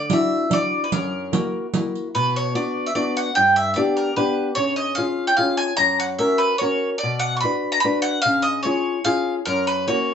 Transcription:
Already playing: D5
0.10 D4 E4 F#4 E5, riq
0.50 D4 E4 F#4 D5, riq
0.84 B4
0.92 F#2 A#4, riq
1.32 A#3 E4 F#4, riq
1.74 A#3 E4 F#4, riq
1.95 riq
2.15 B2 B4
2.36 C#5
2.55 B3 D4 F#4 D5
2.87 E5
2.95 B3 D4 F#4 D5
3.17 F#5
3.35 G2 G5
3.56 E5
3.74 B3 D4 G4 D5 E5
3.97 A#4
4.16 B3 D4 G4 B4
4.55 C#3 C#5
4.76 D#5
4.95 C#4 F4 G#4 F5
5.27 G5
5.37 C#4 F4 G#4 F5
5.57 G#5
5.77 F#2 A#5
6.00 F#5
6.19 C#4 F#4 A#4 E5
6.38 B4
6.58 C#4 F#4 C#5
6.62 A#4
6.98 D5
7.03 B2
7.19 F#5
7.37 B5 C#6
7.44 D4 F#4 B4
7.72 A#5
7.80 B5
7.84 D4 F#4 B4
8.02 F#5
8.22 F5
8.26 C#3
8.42 D#5
8.63 C#4 F4 G#4 C#5
9.05 C#4 F4 G#4 F5
9.46 F#2 A#4
9.67 B4
9.87 A#3 C#4 F#4 C#5

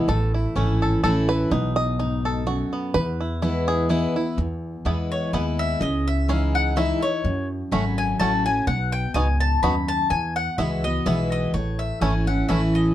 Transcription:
0.08 A1 A2 A4
0.34 E4
0.55 G#1 E3 A3 C#4 E4
0.82 A4
1.03 A1 E3 A3 C#4 E4 A4
1.29 B4
1.51 B1 B2 D#4
1.76 D#5
1.99 G#2 D#4
2.25 A4
2.47 F#2 F#4
2.73 B3
2.94 E2 B4
3.21 E4
3.42 E3 G#3 B3 E4
3.68 G#4
3.89 E3 G#3 B3 E4
4.16 B3 E4
4.37 E2
4.85 E2 E3 G#3 B3 E4
5.12 C#5
5.33 D#2 G#3 B3 E4 B4
5.59 E5
5.81 C#2 C#3 D#5
6.07 E5
6.28 E3 G#3 C#4 D#4 E4 F5
6.55 F#5
6.76 E3 G#3 C#4 D#4 E4 E5
7.02 D#4 E4 C#5
7.24 F#2
7.71 G#1 F#3 A3 C#4 F#4 B5
7.98 G#5
8.19 A1 F#3 A3 C#4 F#4 A5
8.46 C#4 F#4 G#5
8.67 B1 B2 F#5
8.92 G5
9.14 C#2 G#2 B3 D#4 F#4 G#5
9.40 A5
9.62 D#2 F#2 B3 D#4 F#4 B5
9.88 A5
10.10 E2 G#5
10.36 F#5
10.58 C#2 E3 G#3 B3 E4 F#4 E5
10.84 B3 F#4 D#5
11.06 B1 E3 G#3 B3 E4 F#4 E5
11.32 D#5
11.53 A1 A2 C#5
11.79 E5
12.01 G#1 E3 A3 C#4 E4 G#5
12.27 C#4 E4 F#5
12.48 A1 E3 A3 C#4 E4 E5
12.75 D#5

